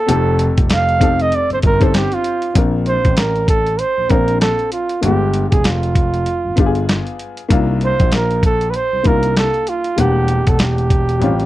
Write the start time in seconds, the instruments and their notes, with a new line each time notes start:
Already playing: flugelhorn A4
0.06 grand piano F1, upright piano C4 D#4 G4, closed hi-hat
0.10 upright piano A4
0.39 closed hi-hat
0.57 grand piano F1, kick, closed hi-hat
0.70 flugelhorn F5, snare, closed hi-hat
0.89 closed hi-hat
0.99 upright piano C4 D#4 G4 A4, kick, closed hi-hat
1.20 flugelhorn D#5, closed hi-hat
1.32 flugelhorn D5, closed hi-hat
1.50 grand piano G1, flugelhorn C5, closed hi-hat
1.62 grand piano G1, flugelhorn A#4, kick, closed hi-hat
1.79 upright piano C4 D#4 G4 C5, kick, closed hi-hat
1.83 flugelhorn A4
1.94 flugelhorn G4, snare, closed hi-hat
2.12 flugelhorn F4, closed hi-hat
2.24 closed hi-hat
2.42 closed hi-hat
2.54 grand piano A#1, upright piano C4 D4 F4, kick, closed hi-hat
2.58 upright piano A#4
2.86 flugelhorn C5, closed hi-hat
3.05 grand piano A1, kick, closed hi-hat
3.17 flugelhorn A#4, snare, closed hi-hat
3.36 closed hi-hat
3.48 flugelhorn A4, kick, closed hi-hat
3.67 closed hi-hat
3.79 flugelhorn C5, closed hi-hat
3.97 grand piano A#1
4.08 grand piano A#1, upright piano C4 D4 F4 C5, flugelhorn A#4, kick, closed hi-hat
4.28 closed hi-hat
4.41 flugelhorn A4, snare, closed hi-hat
4.59 closed hi-hat
4.72 flugelhorn F4, closed hi-hat
4.89 closed hi-hat
5.01 grand piano G1, upright piano A#3 D4 F4, flugelhorn G4, closed hi-hat
5.05 upright piano G#3 B3
5.34 closed hi-hat
5.49 grand piano F1, flugelhorn G4 G#4, kick, closed hi-hat
5.64 flugelhorn F4, snare, closed hi-hat
5.83 closed hi-hat
5.95 kick, closed hi-hat
6.14 closed hi-hat
6.26 closed hi-hat
6.45 grand piano G1
6.56 grand piano G1, upright piano B3 D4 F4 G4, kick, closed hi-hat
6.66 upright piano G#4
6.75 closed hi-hat
6.89 snare, closed hi-hat
7.07 closed hi-hat
7.19 closed hi-hat
7.37 closed hi-hat
7.49 grand piano C2, upright piano A#3 D4 D#4 F4, kick, closed hi-hat
7.81 flugelhorn C5, closed hi-hat
8.00 grand piano A#1, kick, closed hi-hat
8.12 flugelhorn A#4, snare, closed hi-hat
8.31 closed hi-hat
8.43 flugelhorn A4, kick, closed hi-hat
8.61 closed hi-hat
8.70 flugelhorn B4, closed hi-hat
8.76 flugelhorn C5
8.92 grand piano C2
9.03 grand piano C2, upright piano A#3 D4 D#4 F4, flugelhorn A#4, kick, closed hi-hat
9.23 closed hi-hat
9.37 flugelhorn A4, snare, closed hi-hat
9.54 closed hi-hat
9.67 flugelhorn F4, closed hi-hat
9.84 closed hi-hat
9.96 grand piano E1, upright piano G3 A#3 D4 F#5, flugelhorn G4, closed hi-hat
10.28 closed hi-hat
10.47 grand piano E1, flugelhorn A4, kick, closed hi-hat
10.59 flugelhorn G4, snare, closed hi-hat
10.78 closed hi-hat
10.90 kick, closed hi-hat
11.09 closed hi-hat
11.19 grand piano A1, upright piano G3 C4 C#4, closed hi-hat
11.23 upright piano F4
11.40 closed hi-hat